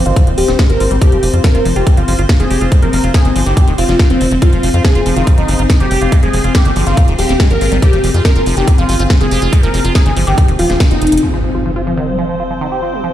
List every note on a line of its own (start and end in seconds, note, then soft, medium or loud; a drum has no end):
0.00 11.22 C4 medium
0.00 4.44 C5 medium
0.06 0.13 G1 medium
0.06 0.18 D#3 medium
0.06 0.25 F4 loud
0.06 closed hi-hat soft
0.16 0.23 F3 medium
0.16 kick loud
0.16 closed hi-hat loud
0.27 0.34 D#1 medium
0.27 0.33 D#3 loud
0.27 closed hi-hat soft
0.38 0.45 D#1 loud
0.38 0.44 F3 medium
0.38 0.57 G4 loud
0.38 open hi-hat loud
0.48 0.56 D#1 medium
0.48 0.52 C4 loud
0.48 snare soft
0.48 closed hi-hat soft
0.59 0.71 G#3 loud
0.59 kick loud
0.59 snare loud
0.59 closed hi-hat loud
0.70 0.77 G#1 medium
0.70 0.76 F3 medium
0.70 0.89 A#4 loud
0.70 closed hi-hat soft
0.80 0.87 G#1 loud
0.80 0.86 F4 medium
0.80 open hi-hat loud
0.91 0.98 G#1 medium
0.91 0.97 G3 loud
0.91 closed hi-hat soft
1.02 1.11 F3 medium
1.02 1.27 G4 loud
1.02 kick loud
1.02 closed hi-hat medium
1.12 1.19 F1 medium
1.12 1.18 F3 loud
1.12 closed hi-hat soft
1.23 1.30 F1 loud
1.23 1.29 F3 medium
1.23 open hi-hat loud
1.33 1.41 F2 medium
1.33 1.43 F4 medium
1.33 closed hi-hat soft
1.44 1.50 F3 loud
1.44 1.63 A#4 loud
1.44 kick loud
1.44 snare loud
1.44 closed hi-hat medium
1.55 1.62 F1 medium
1.55 1.61 F4 loud
1.55 closed hi-hat soft
1.65 1.73 F1 loud
1.65 1.75 F3 loud
1.65 open hi-hat loud
1.76 1.83 F1 medium
1.76 1.88 F4 medium
1.76 1.89 G4 medium
1.76 closed hi-hat soft
1.87 1.96 G3 loud
1.87 kick loud
1.87 closed hi-hat medium
1.97 2.04 G1 medium
1.97 2.03 F3 loud
1.97 2.23 F4 loud
1.97 closed hi-hat soft
2.08 2.15 G1 loud
2.08 2.14 F3 medium
2.08 open hi-hat loud
2.19 2.26 G1 medium
2.19 2.22 F4 medium
2.19 closed hi-hat soft
2.29 2.33 F3 medium
2.29 kick loud
2.29 snare loud
2.29 closed hi-hat medium
2.40 2.47 F1 medium
2.40 2.46 D#3 loud
2.40 2.65 G#4 loud
2.40 closed hi-hat soft
2.50 2.58 F1 loud
2.50 2.60 G4 medium
2.50 open hi-hat loud
2.61 2.68 F1 loud
2.61 2.73 F4 medium
2.61 closed hi-hat soft
2.72 2.81 G3 loud
2.72 kick loud
2.72 closed hi-hat medium
2.82 2.90 F1 medium
2.82 2.89 F3 loud
2.82 3.01 A#4 loud
2.82 closed hi-hat soft
2.93 3.00 F1 loud
2.93 2.99 F3 medium
2.93 open hi-hat loud
3.04 3.11 F1 medium
3.04 3.13 F4 medium
3.04 closed hi-hat soft
3.14 3.18 G3 medium
3.14 3.33 G#4 loud
3.14 kick loud
3.14 snare loud
3.14 closed hi-hat medium
3.25 3.32 G1 medium
3.25 3.31 D#3 loud
3.25 closed hi-hat soft
3.36 3.43 G1 loud
3.36 3.45 F3 loud
3.36 open hi-hat loud
3.46 3.53 G1 medium
3.46 3.58 D#3 medium
3.46 3.65 G4 loud
3.46 closed hi-hat soft
3.57 3.63 F3 medium
3.57 kick loud
3.57 closed hi-hat medium
3.68 3.75 D#1 medium
3.68 3.74 D#3 loud
3.68 closed hi-hat soft
3.78 3.85 F1 loud
3.78 3.84 C4 medium
3.78 3.97 F4 loud
3.78 open hi-hat loud
3.89 3.96 F1 loud
3.89 3.95 F3 medium
3.89 snare soft
3.89 closed hi-hat soft
3.99 4.09 F4 medium
3.99 kick loud
3.99 snare loud
3.99 closed hi-hat medium
4.10 4.17 F1 medium
4.10 4.19 F3 medium
4.10 4.29 C4 loud
4.10 closed hi-hat soft
4.21 4.28 F1 loud
4.21 4.27 D#3 medium
4.21 open hi-hat medium
4.31 4.39 F1 medium
4.31 4.35 F3 medium
4.31 closed hi-hat soft
4.42 4.51 F3 medium
4.42 4.67 F4 loud
4.42 11.25 G#4 medium
4.42 kick loud
4.42 closed hi-hat medium
4.53 4.60 F1 medium
4.53 4.59 F3 loud
4.53 closed hi-hat soft
4.63 4.70 F1 loud
4.63 4.69 F3 medium
4.63 open hi-hat loud
4.74 4.81 F2 medium
4.74 4.83 F4 medium
4.74 closed hi-hat soft
4.85 4.91 F3 loud
4.85 5.03 G#4 loud
4.85 kick loud
4.85 snare loud
4.85 closed hi-hat medium
4.95 5.02 F1 medium
4.95 5.01 F4 loud
4.95 closed hi-hat soft
5.06 5.13 F1 loud
5.06 5.15 F3 loud
5.06 open hi-hat medium
5.16 5.24 F1 medium
5.16 5.29 D#3 loud
5.16 5.29 F4 medium
5.16 closed hi-hat soft
5.27 5.36 G3 loud
5.27 kick loud
5.27 closed hi-hat medium
5.38 5.45 G1 medium
5.38 5.44 F3 loud
5.38 5.63 D#4 medium
5.38 closed hi-hat soft
5.48 5.56 G1 loud
5.48 5.54 F3 medium
5.48 open hi-hat loud
5.59 5.66 G1 medium
5.59 5.63 F4 medium
5.59 closed hi-hat soft
5.70 5.73 F3 medium
5.70 kick loud
5.70 snare loud
5.70 closed hi-hat medium
5.80 5.87 F1 medium
5.80 5.86 D#3 loud
5.80 6.05 G4 loud
5.80 closed hi-hat soft
5.91 5.98 F1 loud
5.91 6.00 G4 medium
5.91 open hi-hat medium
6.02 6.09 F1 loud
6.02 6.14 F4 medium
6.02 closed hi-hat soft
6.12 6.21 G3 loud
6.12 kick loud
6.12 closed hi-hat medium
6.23 6.30 F1 medium
6.23 6.29 F3 loud
6.23 6.42 G#4 medium
6.23 closed hi-hat soft
6.33 6.41 F1 loud
6.33 6.40 F3 medium
6.33 open hi-hat medium
6.44 6.51 F1 loud
6.44 6.53 F4 medium
6.44 closed hi-hat soft
6.55 6.58 G3 medium
6.55 6.74 G4 loud
6.55 kick loud
6.55 snare loud
6.55 closed hi-hat medium
6.65 6.73 G1 medium
6.65 6.71 D#3 loud
6.65 closed hi-hat soft
6.76 6.83 G1 loud
6.76 6.85 F3 loud
6.76 open hi-hat medium
6.87 6.94 G1 medium
6.87 6.99 D#3 medium
6.87 7.06 F4 medium
6.87 closed hi-hat soft
6.97 7.03 F3 medium
6.97 kick loud
6.97 closed hi-hat medium
7.08 7.15 D#1 medium
7.08 7.14 D#3 loud
7.08 closed hi-hat soft
7.19 7.26 D#1 loud
7.19 7.25 F3 medium
7.19 7.37 G4 loud
7.19 open hi-hat loud
7.29 7.36 D#1 medium
7.29 7.33 C4 loud
7.29 snare soft
7.29 closed hi-hat soft
7.40 7.52 G#3 loud
7.40 kick loud
7.40 snare loud
7.40 closed hi-hat medium
7.50 7.58 G#1 medium
7.50 7.57 F3 medium
7.50 7.69 A#4 loud
7.50 closed hi-hat soft
7.61 7.68 G#1 loud
7.61 7.67 F4 medium
7.61 open hi-hat medium
7.72 7.79 G#1 loud
7.72 7.78 G3 loud
7.72 closed hi-hat soft
7.82 7.92 F3 medium
7.82 8.08 G4 loud
7.82 kick loud
7.82 closed hi-hat loud
7.93 8.00 F1 medium
7.93 7.99 F3 loud
7.93 closed hi-hat soft
8.04 8.11 F1 loud
8.04 8.10 F3 medium
8.04 open hi-hat loud
8.14 8.21 F2 loud
8.14 8.23 F4 medium
8.14 closed hi-hat soft
8.25 8.31 F3 loud
8.25 8.44 A#4 loud
8.25 kick loud
8.25 snare loud
8.25 closed hi-hat loud
8.36 8.43 F1 medium
8.36 8.42 F4 loud
8.36 closed hi-hat soft
8.46 8.53 F1 loud
8.46 8.55 F3 loud
8.46 open hi-hat medium
8.57 8.64 F1 medium
8.57 8.69 D#3 loud
8.57 8.70 G4 medium
8.57 closed hi-hat soft
8.68 8.77 G3 loud
8.68 kick loud
8.68 closed hi-hat loud
8.78 8.85 G1 medium
8.78 8.84 F3 loud
8.78 9.03 F4 loud
8.78 closed hi-hat soft
8.89 8.96 G1 loud
8.89 8.95 F3 medium
8.89 open hi-hat loud
8.99 9.07 G1 loud
8.99 9.03 F4 medium
8.99 closed hi-hat soft
9.10 9.14 F3 medium
9.10 kick loud
9.10 snare loud
9.10 closed hi-hat loud
9.21 9.28 F1 medium
9.21 9.27 D#3 loud
9.21 9.46 G#4 loud
9.21 closed hi-hat soft
9.31 9.39 F1 loud
9.31 9.40 G4 medium
9.31 open hi-hat medium
9.42 9.49 F1 loud
9.42 9.54 F4 medium
9.42 closed hi-hat soft
9.53 9.62 G3 loud
9.53 kick loud
9.53 closed hi-hat loud
9.63 9.70 F1 medium
9.63 9.69 F3 loud
9.63 9.82 A#4 medium
9.63 closed hi-hat soft
9.74 9.81 F1 loud
9.74 9.80 F3 medium
9.74 open hi-hat loud
9.85 9.92 F1 loud
9.85 9.94 F4 medium
9.85 closed hi-hat soft
9.95 9.99 G3 medium
9.95 10.14 G#4 loud
9.95 kick loud
9.95 snare loud
9.95 closed hi-hat loud
10.06 10.13 G1 medium
10.06 10.12 D#3 loud
10.06 closed hi-hat soft
10.16 10.24 G1 loud
10.16 10.26 F3 loud
10.16 open hi-hat medium
10.27 10.34 G1 loud
10.27 10.39 D#3 medium
10.27 10.46 G4 loud
10.27 closed hi-hat soft
10.38 10.44 F3 medium
10.38 kick loud
10.38 closed hi-hat loud
10.48 10.56 D#1 medium
10.48 10.54 D#3 loud
10.48 closed hi-hat soft
10.59 10.66 D#1 loud
10.59 10.68 F3 loud
10.59 10.78 F4 loud
10.59 open hi-hat loud
10.70 10.77 D#1 medium
10.70 10.82 F3 medium
10.70 snare soft
10.70 closed hi-hat soft
10.80 10.86 D#3 loud
10.80 kick loud
10.80 snare loud
10.80 closed hi-hat loud
10.91 10.98 F1 medium
10.91 10.97 C4 medium
10.91 11.10 D#4 loud
10.91 closed hi-hat soft
11.02 11.09 F1 loud
11.02 11.14 D#3 medium
11.02 closed hi-hat medium
11.07 closed hi-hat medium
11.12 11.19 F1 loud
11.12 11.21 F3 medium
11.12 closed hi-hat medium
11.17 closed hi-hat medium
11.23 11.32 F3 medium
11.23 13.13 C4 medium
11.23 13.13 C5 medium
11.23 impact medium
11.33 11.40 F3 loud
11.44 11.50 F3 medium
11.55 11.64 F4 medium
11.65 11.72 F3 loud
11.76 11.82 F4 loud
11.87 11.96 F3 loud
11.97 12.09 D#3 loud
12.08 12.17 G3 loud
12.19 12.25 F3 loud
12.29 12.35 F3 medium
12.40 12.44 F4 medium
12.51 12.54 F3 medium
12.61 12.67 D#3 loud
12.72 12.81 G4 medium
12.82 12.95 F4 medium
12.93 13.02 G3 loud
13.04 13.10 F3 medium